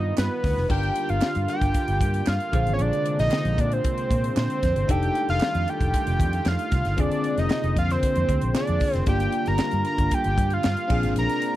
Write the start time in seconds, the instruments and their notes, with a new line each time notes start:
Already playing: fingered electric bass G2, analog synth pad D#3 G3 B3 F4, tine electric piano B3 D#4 F4 B4, analog synth lead D#5
0.17 fingered electric bass G2, analog synth lead B4, snare, clap, closed hi-hat
0.44 fingered electric bass D2, kick, snare, open hi-hat
0.57 fingered electric bass F1, snare
0.69 fingered electric bass G1, analog synth pad D3 G3 A#3 F4, tine electric piano D4 F4 G4 A#4, analog synth lead G5, kick, crash
0.83 closed hi-hat
0.96 closed hi-hat
1.09 fingered electric bass G1, analog synth lead F5, closed hi-hat
1.21 muted fingered electric bass stroke, snare, clap
1.35 fingered electric bass G2, closed hi-hat
1.48 analog synth lead G5, closed hi-hat
1.61 fingered electric bass G1, kick, closed hi-hat
1.74 kick, closed hi-hat
1.88 fingered electric bass G1, closed hi-hat
2.01 fingered electric bass G2, kick, closed hi-hat
2.14 closed hi-hat
2.26 fingered electric bass G2, analog synth lead F5, snare, clap
2.40 closed hi-hat
2.52 fingered electric bass A#1, analog synth pad C3 D3 G#3, tine electric piano D3 F4 G#4 C5, kick, closed hi-hat
2.67 fingered electric bass G#1, closed hi-hat
2.74 analog synth lead C#5
2.79 fingered electric bass A#1, analog synth lead D5, closed hi-hat
2.93 closed hi-hat
3.06 closed hi-hat
3.19 fingered electric bass A#1, analog synth lead D#5, snare, closed hi-hat
3.31 snare, clap
3.45 fingered electric bass A#1, closed hi-hat
3.58 fingered electric bass A#2, analog synth lead D5, kick, closed hi-hat
3.72 analog synth lead C5, closed hi-hat
3.84 kick, closed hi-hat
3.98 closed hi-hat
4.11 fingered electric bass A#2, kick, closed hi-hat
4.24 closed hi-hat
4.37 fingered electric bass A#2, analog synth lead C5, snare, clap
4.50 closed hi-hat
4.63 fingered electric bass F2, kick, snare, closed hi-hat
4.76 fingered electric bass G1, closed hi-hat
4.88 fingered electric bass F1, analog synth pad D#3 G3 A3 F4, tine electric piano D4 D#4 G4 A4, analog synth lead G5, kick, closed hi-hat
5.03 closed hi-hat
5.15 closed hi-hat
5.29 fingered electric bass F1, analog synth lead F5, snare, closed hi-hat
5.40 snare, clap
5.55 fingered electric bass F2, closed hi-hat
5.68 analog synth lead G5, closed hi-hat
5.81 fingered electric bass F1, kick, closed hi-hat
5.94 kick, closed hi-hat
6.07 fingered electric bass F1, closed hi-hat
6.20 fingered electric bass F2, kick, closed hi-hat
6.33 closed hi-hat
6.46 fingered electric bass F2, analog synth lead F5, snare, clap
6.59 closed hi-hat
6.72 fingered electric bass C2, kick, snare, closed hi-hat
6.85 fingered electric bass G1, snare, closed hi-hat
6.97 fingered electric bass F1, analog synth pad C3 D3 G#3 A#3, tine electric piano D3 C4 F4 G#4, analog synth lead D5, kick, closed hi-hat
7.11 closed hi-hat
7.24 closed hi-hat
7.38 fingered electric bass F1, analog synth lead D#5, snare, closed hi-hat
7.50 snare, clap
7.64 fingered electric bass F1, closed hi-hat
7.77 fingered electric bass F2, analog synth lead F5, kick, closed hi-hat
7.90 analog synth lead C5, snare, closed hi-hat
8.03 kick, closed hi-hat
8.16 fingered electric bass F2, closed hi-hat
8.29 fingered electric bass D2, kick, closed hi-hat
8.41 fingered electric bass A#1, closed hi-hat
8.54 tine electric piano C4 D4 F4 G#4, analog synth lead D5, snare, clap
8.67 fingered electric bass F2, closed hi-hat
8.80 kick, snare, open hi-hat
8.94 fingered electric bass F1, snare, closed hi-hat
9.06 fingered electric bass G1, analog synth pad D3 G3 F4, tine electric piano A#3 D4 F4 G4, analog synth lead G5, kick, closed hi-hat
9.20 closed hi-hat
9.32 closed hi-hat
9.46 fingered electric bass G1, analog synth lead A#5, snare, closed hi-hat
9.59 snare, clap
9.71 fingered electric bass G2, closed hi-hat
9.85 analog synth lead A#5, closed hi-hat
9.98 fingered electric bass G1, kick, closed hi-hat
10.11 analog synth lead G5, kick, closed hi-hat
10.24 fingered electric bass G1, closed hi-hat
10.38 fingered electric bass G2, kick, closed hi-hat
10.50 analog synth lead F5, closed hi-hat
10.64 fingered electric bass G2, analog synth lead F5, snare, clap
10.77 closed hi-hat
10.88 fingered electric bass A#1, analog synth pad C3 G#3 D4, tine electric piano C4 D4 F4 G#4, kick, crash
11.03 fingered electric bass G#1, snare, closed hi-hat
11.16 fingered electric bass A#1, analog synth lead A#5, closed hi-hat
11.29 closed hi-hat
11.42 closed hi-hat